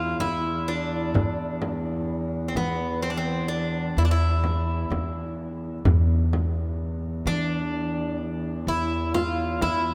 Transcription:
Already playing: E2 F4
0.20 E2 E4, frame drum
0.68 D4
1.14 E2, frame drum
1.62 frame drum
2.48 C4
2.55 E3 B3, frame drum
3.02 C4
3.10 D4
3.17 C4
3.48 D4
3.97 E2 E4
4.05 D4
4.11 E4
4.44 frame drum
4.90 E2, frame drum
5.85 E2, frame drum
6.33 frame drum
7.26 E3 D4, frame drum
8.67 E2 E4
9.14 F4, frame drum
9.62 E2 E4, frame drum

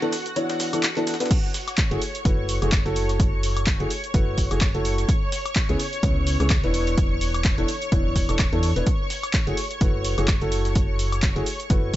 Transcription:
Already playing: F#4 F#5
0.02 E3 B3 D4 E4 A4, closed hi-hat
0.13 snare, closed hi-hat, open hi-hat, shaker
0.26 closed hi-hat, shaker
0.36 E3 B3 D4 E4 C#5, closed hi-hat, shaker
0.49 snare, closed hi-hat
0.60 snare, closed hi-hat, open hi-hat, shaker
0.73 E3 B3 D4 E4 A4, closed hi-hat, high woodblock, shaker
0.83 snare, clap, closed hi-hat, high woodblock, shaker
0.97 E3 B3 D4 E4 A4, clap, closed hi-hat
1.07 snare, closed hi-hat, open hi-hat, shaker
1.14 snare, closed hi-hat
1.20 B3 D4 E4 B4, snare, closed hi-hat, shaker
1.26 snare, closed hi-hat
1.31 C#5 C#6, kick, closed hi-hat, crash, shaker
1.54 snare, closed hi-hat, open hi-hat, shaker
1.68 closed hi-hat, high woodblock, shaker
1.78 kick, snare, clap, closed hi-hat, shaker
1.91 F#1 A3 E4 F#4 G#4, closed hi-hat
2.02 closed hi-hat, open hi-hat, shaker
2.15 closed hi-hat, shaker
2.25 F#1 A3 E4 F#4 B4, kick, closed hi-hat, shaker
2.49 closed hi-hat, open hi-hat, shaker
2.62 F#1 A3 E4 F#4 G#4, closed hi-hat, high woodblock, shaker
2.72 kick, snare, clap, closed hi-hat, high woodblock, shaker
2.86 F#1 A3 E4 F#4 A4, closed hi-hat
2.96 closed hi-hat, open hi-hat, shaker
3.09 snare, closed hi-hat, shaker
3.20 kick, closed hi-hat, shaker
3.43 closed hi-hat, open hi-hat, shaker
3.57 closed hi-hat, high woodblock, shaker
3.67 kick, snare, clap, closed hi-hat, shaker
3.80 F#1 A3 E4 F#4 G#4, closed hi-hat
3.90 closed hi-hat, open hi-hat, shaker
4.04 closed hi-hat, shaker
4.14 F#1 A3 E4 F#4 B4, kick, closed hi-hat, shaker
4.38 kick, closed hi-hat, open hi-hat, shaker
4.51 F#1 A3 E4 F#4 G#4, snare, closed hi-hat, high woodblock, shaker
4.61 kick, snare, clap, closed hi-hat, high woodblock, shaker
4.75 F#1 A3 E4 F#4 A4, closed hi-hat
4.85 closed hi-hat, open hi-hat, shaker
4.98 snare, closed hi-hat, shaker
5.09 kick, closed hi-hat, shaker
5.32 snare, closed hi-hat, open hi-hat, shaker
5.46 closed hi-hat, high woodblock, shaker
5.56 kick, snare, clap, closed hi-hat, shaker
5.69 C#2 C#3 B3 C#4 E4 G#4, closed hi-hat
5.79 closed hi-hat, open hi-hat, shaker
5.93 closed hi-hat, shaker
6.03 C#2 C#3 B3 C#4 E4 C#5, kick, closed hi-hat, shaker
6.27 closed hi-hat, open hi-hat, shaker
6.40 C#2 C#3 B3 C#4 E4 G#4, closed hi-hat, high woodblock, shaker
6.50 kick, snare, clap, closed hi-hat, high woodblock, shaker
6.64 E1 E3 B3 D4 E4 B4, closed hi-hat
6.74 closed hi-hat, open hi-hat, shaker
6.87 snare, closed hi-hat, shaker
6.97 kick, closed hi-hat, shaker
7.21 closed hi-hat, open hi-hat, shaker
7.34 closed hi-hat, high woodblock, shaker
7.45 kick, snare, clap, closed hi-hat, shaker
7.58 E1 E3 B3 D4 E4 A4, closed hi-hat
7.68 closed hi-hat, open hi-hat, shaker
7.82 closed hi-hat, shaker
7.92 E1 E3 B3 D4 E4 C#5, kick, closed hi-hat, shaker
8.16 kick, closed hi-hat, open hi-hat, shaker
8.29 E1 E3 B3 D4 E4 A4, snare, closed hi-hat, high woodblock, shaker
8.39 kick, snare, clap, closed hi-hat, high woodblock, shaker
8.53 E2 E3 B3 D4 E4 A4, closed hi-hat
8.63 closed hi-hat, open hi-hat, shaker
8.76 E1 B3 D4 E4 B4, snare, closed hi-hat, shaker
8.87 kick, closed hi-hat, shaker
9.10 snare, closed hi-hat, open hi-hat, shaker
9.23 closed hi-hat, high woodblock, shaker
9.34 kick, snare, clap, closed hi-hat, shaker
9.47 F#1 A3 E4 F#4 G#4, closed hi-hat
9.57 closed hi-hat, open hi-hat, shaker
9.71 closed hi-hat, shaker
9.81 F#1 A3 E4 F#4 B4, kick, closed hi-hat, shaker
10.05 closed hi-hat, open hi-hat, shaker
10.18 F#1 A3 E4 F#4 G#4, closed hi-hat, high woodblock, shaker
10.28 kick, snare, clap, closed hi-hat, high woodblock, shaker
10.41 F#1 A3 E4 F#4 A4, closed hi-hat
10.52 closed hi-hat, open hi-hat, shaker
10.65 snare, closed hi-hat, shaker
10.75 kick, closed hi-hat, shaker
10.99 closed hi-hat, open hi-hat, shaker
11.12 closed hi-hat, high woodblock, shaker
11.22 kick, snare, clap, closed hi-hat, shaker
11.36 F#1 A3 E4 F#4 G#4, closed hi-hat
11.46 closed hi-hat, open hi-hat, shaker
11.60 closed hi-hat, shaker
11.70 F#1 A3 E4 F#4 B4, kick, closed hi-hat, shaker

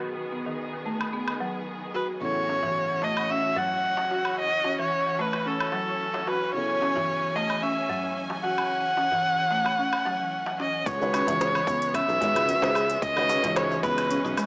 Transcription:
Already playing: B1 D#3 B3 C#4 F#4 G#4 B4
0.05 G#4
0.32 B3
0.46 D#3
0.73 D#3
0.86 A3
1.01 low woodblock
1.13 B3
1.28 low woodblock
1.40 F#3
1.94 F#4 B4
2.20 A1 C#3 E3 F#3 B3 C#4 E4 F#4 A4 C#5
2.48 C#4, darbuka tek
2.63 E3, darbuka dum
2.90 E3
3.02 A3 D#5, darbuka tek
3.17 low woodblock
3.30 C#4 E5
3.56 F#3 F#5, darbuka ka, darbuka dum
3.71 darbuka ka
3.97 darbuka tek
4.11 F#4, darbuka ka
4.25 low woodblock
4.40 D#5
4.64 C#4, darbuka tek
4.79 E3 C#5
5.06 E3
5.19 A3 B4, darbuka tek
5.33 darbuka ka, low woodblock
5.46 C#4 A4
5.60 darbuka ka, low woodblock
5.72 F#3, darbuka tek
6.14 darbuka ka, darbuka tek
6.27 F#4 B4, darbuka tek
6.53 C#3 F#3 B3 E4 A4 C#5 G#5
6.81 C#4, darbuka tek
6.96 E3, darbuka dum
7.23 E3
7.36 A3 D#5, darbuka tek
7.50 low woodblock
7.63 C#4 E5
7.89 F#3, darbuka ka, darbuka dum
8.04 darbuka ka
8.30 darbuka tek
8.43 F#4 F#5, darbuka ka
8.58 low woodblock
8.97 C#4, darbuka tek
9.11 E3, darbuka dum
9.39 E3
9.51 A3, darbuka tek
9.65 darbuka ka, low woodblock
9.79 C#4
9.93 darbuka ka, low woodblock
10.05 F#3, darbuka tek
10.20 E3
10.46 darbuka ka, darbuka tek
10.59 C#4 D#5, darbuka tek
10.86 C#2 C#3 G#3 B3 C#5, kick, closed hi-hat, shaker
11.00 D#3 G#3 C#4 F#4 B4, shaker
11.14 C#4, closed hi-hat, darbuka tek, low woodblock, shaker
11.27 C#2 D#3 E3 G#3 C#4 F#4 C#5, closed hi-hat, darbuka dum, shaker
11.41 snare, closed hi-hat, shaker
11.55 E3, low woodblock, shaker
11.67 C#2 B3, kick, closed hi-hat, darbuka tek, shaker
11.82 closed hi-hat, shaker
11.94 C#4 E5, kick, closed hi-hat, low woodblock, shaker
12.09 B1, shaker
12.21 D#3 G#3 C#4 F#4 B4, closed hi-hat, darbuka ka, darbuka dum, shaker
12.35 C#2, closed hi-hat, darbuka ka, low woodblock, shaker
12.48 D#3 G#3 C#4 F#4 B4, closed hi-hat, shaker
12.62 C#2, snare, darbuka tek, shaker
12.75 G#4, darbuka ka, low woodblock, shaker
12.90 closed hi-hat, shaker
13.02 C#2 C#4 D#5, kick, closed hi-hat, shaker
13.16 D#3 G#3 C#4 F#4 B4, low woodblock, shaker
13.29 C#4, closed hi-hat, darbuka tek, shaker
13.42 C#2 E3 G#3 C#4 D#4 F#4 D#5, closed hi-hat, darbuka dum, shaker
13.56 C#5, snare, closed hi-hat, low woodblock, shaker
13.71 E3, shaker
13.83 C#2 B3 B4, kick, closed hi-hat, darbuka tek, shaker
13.98 closed hi-hat, darbuka ka, low woodblock, shaker
14.11 C#4, closed hi-hat, shaker
14.25 B1, darbuka ka, shaker
14.37 G#3, closed hi-hat, darbuka tek, low woodblock, shaker

